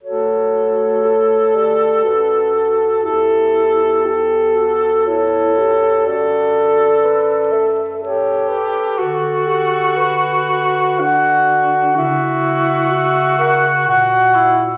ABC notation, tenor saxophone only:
X:1
M:3/4
L:1/8
Q:1/4=61
K:D
V:1 name="Tenor saxophone"
A6 | A2 A2 A2 | A3 z G2 | F4 F2 |
F4 F E |]